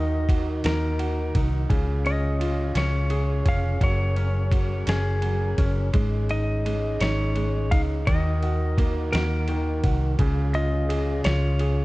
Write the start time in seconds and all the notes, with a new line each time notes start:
Already playing: D#2 D#3 D#4 F#4 A#4 D#5
0.29 F#4, kick, ride
0.64 D#2 D#4 A#4, snare, ride
0.99 F#4, ride
1.35 C2 D#4, kick, ride
1.69 C#2 C#3 C#4 F4 G#4, kick, ride
2.05 C#4 D#5, ride
2.40 F4, ride
2.75 C#2 C#4 C#5, snare, ride
3.10 G#4, ride
3.45 F1 C#4 F5, kick, ride
3.81 F#1 F#3 A#4 C#5, kick, ride
4.16 C#4, ride
4.52 F#3, kick, ride
4.87 F#1 C#4 G#4, snare, ride
5.22 F#3, ride
5.58 F#1 C#4, kick, ride
5.93 G#1 G#3 D#4, kick, ride
6.29 D#4 D#5, ride
6.66 G#3, ride
7.00 G#1 D#4 C#5, snare, ride
7.36 G#3, ride
7.71 C#2 D#4 F5, kick, ride
8.07 D#2 D#3 F#4 A#4 D#5, kick, ride
8.43 F#4, ride
8.78 A#3, kick, ride
9.12 D#2 F#4 A#4, snare, ride
9.48 D#3, ride
9.84 C2 F#4, kick, ride
10.19 C#2 C#3 C#4 F4 G#4, kick, ride
10.54 F4 D#5, ride
10.89 G#4, ride
11.24 C#2 F4 C#5, snare, ride
11.59 G#4, ride